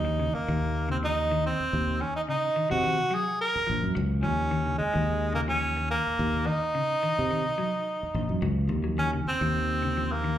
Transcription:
0.00 0.28 D#2 medium
0.00 0.36 D#4 medium
0.05 0.13 D#3 medium
0.20 0.35 C#3 medium
0.34 0.89 A#3 medium
0.34 muted fingered electric bass stroke soft
0.48 1.48 D#2 medium
0.48 0.64 D#3 medium
0.89 0.97 C#3 medium
0.89 0.97 C4 medium
1.03 1.19 F3 medium
1.03 1.42 D#4 loud
1.31 1.47 D#3 medium
1.46 2.02 C4 loud
1.60 muted fingered electric bass stroke soft
1.73 1.98 D#2 medium
2.01 2.17 D#3 medium
2.01 2.15 C#4 medium
2.16 2.22 D#4 medium
2.29 2.44 C#3 medium
2.29 2.68 D#4 loud
2.56 2.64 D#3 medium
2.70 2.96 C3 medium
2.70 2.77 F3 medium
2.70 3.16 F#4 loud
2.83 2.99 D#3 medium
3.11 3.27 F#3 medium
3.11 3.40 G#4 medium
3.41 3.93 A#4 loud
3.56 muted fingered electric bass stroke soft
3.67 3.82 A#1 medium
3.67 3.83 F3 medium
3.83 3.94 F#2 medium
3.95 4.21 C#2 loud
3.95 4.11 F#3 medium
4.23 4.74 D#2 medium
4.23 4.31 F3 medium
4.23 4.75 C#4 medium
4.51 4.59 D#3 medium
4.66 4.82 C#3 medium
4.78 5.30 G#3 medium
4.78 muted fingered electric bass stroke soft
4.94 5.95 D#2 medium
4.94 5.09 D#3 medium
5.34 5.42 C#3 medium
5.34 5.41 A#3 medium
5.48 5.64 F3 medium
5.48 5.87 C#4 loud
5.77 5.93 D#3 medium
5.91 6.48 A#3 medium
6.07 muted fingered electric bass stroke soft
6.19 6.44 D#2 medium
6.46 6.62 D#3 medium
6.46 8.42 D#4 loud
6.75 6.90 C#3 loud
7.03 7.11 D#3 medium
7.19 7.43 C3 medium
7.31 7.46 D#3 medium
7.58 7.74 F#3 medium
8.03 muted fingered electric bass stroke soft
8.14 8.28 A#1 medium
8.14 8.31 F3 medium
8.29 8.41 F#2 medium
8.42 8.67 C#2 loud
8.42 8.58 F#3 medium
8.69 9.19 D#2 medium
8.69 8.78 F3 medium
8.84 8.91 F#3 medium
8.98 9.06 D#3 medium
8.98 9.11 C#4 medium
9.13 9.29 C#3 medium
9.26 10.14 C4 medium
9.26 muted fingered electric bass stroke soft
9.41 10.38 D#2 medium
9.41 9.57 D#3 medium
9.82 9.90 C#3 medium
9.97 10.13 F3 medium
10.12 10.38 A#3 medium
10.24 10.38 D#3 medium

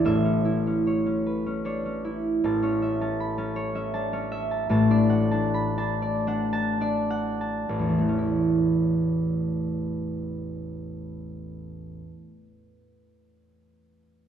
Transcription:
0.00 0.44 E4 medium
0.00 0.11 D5 medium
0.05 2.43 A1 medium
0.05 2.43 A2 medium
0.05 2.81 E5 medium
0.25 0.66 C#4 medium
0.45 2.03 E4 medium
0.67 1.05 C#4 medium
0.87 1.64 C#5 medium
1.06 1.45 C#4 medium
1.26 1.95 B4 medium
1.46 1.84 C#4 medium
1.65 2.00 D4 medium
1.65 2.62 C#5 medium
1.85 2.61 C#4 medium
2.05 4.73 E4 medium
2.44 4.68 A1 medium
2.44 4.69 A2 medium
2.44 3.00 A5 medium
2.62 3.00 C#4 medium
2.62 3.55 C#5 medium
2.82 3.74 E5 medium
3.01 3.37 C#4 medium
3.01 3.36 A5 medium
3.20 3.52 B5 medium
3.38 3.74 C#4 medium
3.38 3.92 A5 medium
3.56 4.12 C#5 medium
3.75 4.12 C#4 medium
3.75 4.30 E5 medium
3.94 4.27 D4 medium
3.94 4.50 A5 medium
4.13 4.74 C#4 medium
4.13 4.74 C#5 medium
4.32 4.74 E5 medium
4.51 4.70 A5 medium
4.69 7.68 A1 medium
4.69 7.74 A2 medium
4.69 5.30 A5 medium
4.90 5.31 D4 medium
4.90 6.01 D5 medium
5.10 6.26 F#5 medium
5.31 5.77 D4 medium
5.31 5.76 A5 medium
5.54 5.95 B5 medium
5.78 6.26 D4 medium
5.78 6.52 A5 medium
6.02 6.80 D5 medium
6.27 6.80 D4 medium
6.27 7.09 F#5 medium
6.53 7.40 A5 loud
6.81 7.75 D4 medium
6.81 7.75 D5 medium
7.10 7.74 F#5 medium
7.41 11.31 A5 medium
7.69 11.99 A1 medium
7.79 12.09 E2 medium
7.89 12.19 E3 medium
7.98 12.29 A3 medium
8.09 12.39 C#4 medium
8.18 12.48 E4 medium

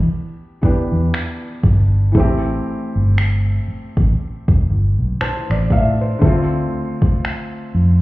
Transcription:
0.00 0.57 E3 medium
0.00 0.58 B3 medium
0.00 0.59 D4 medium
0.00 0.61 G4 medium
0.61 2.10 E3 medium
0.61 2.15 B3 medium
0.61 2.16 D4 soft
0.61 2.16 G4 medium
0.61 muted fingered electric bass stroke soft
0.61 kick medium
0.92 1.10 E2 medium
1.14 finger snap loud
1.63 2.15 G1 medium
1.63 kick medium
2.12 2.59 A1 medium
2.12 6.16 E3 medium
2.12 6.17 A3 medium
2.12 kick medium
2.17 6.19 C4 medium
2.17 6.20 G4 medium
2.96 3.58 G1 medium
3.18 finger snap loud
3.68 muted fingered electric bass stroke soft
3.97 4.15 A1 medium
3.97 kick medium
4.48 4.67 E1 medium
4.48 kick medium
4.69 4.95 G1 medium
4.99 5.17 B1 medium
5.20 5.49 C5 medium
5.20 5.68 A5 medium
5.20 finger snap loud
5.20 muted fingered electric bass stroke soft
5.50 5.68 A1 medium
5.50 5.70 D5 medium
5.50 finger snap medium
5.70 6.14 A2 loud
5.70 5.99 E5 medium
5.70 6.19 F5 medium
5.70 kick medium
6.01 6.49 C5 medium
6.19 6.66 D2 loud
6.19 8.02 D3 medium
6.19 8.02 A3 medium
6.19 kick medium
6.24 8.02 C4 medium
6.24 8.02 F4 medium
7.02 kick medium
7.25 finger snap loud
7.75 8.00 F2 medium

